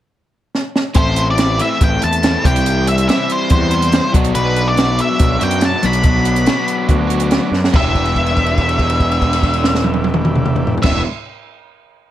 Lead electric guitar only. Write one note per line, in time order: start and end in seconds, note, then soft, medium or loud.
0.97 1.26 C5 medium
1.30 1.61 D5 medium
1.62 1.81 E5 medium
1.84 2.03 G5 medium
2.04 2.46 A5 medium
2.46 2.85 G5 medium
2.88 3.07 E5 medium
3.09 3.31 E5 medium
3.32 3.50 C5 medium
3.52 4.11 C5 medium
4.35 4.68 B4 medium
4.68 5.01 D5 medium
5.01 5.44 E5 medium
5.43 5.62 G5 medium
5.66 5.86 A5 medium
5.86 7.49 B5 medium
7.76 10.76 E5 medium
10.82 11.01 E5 medium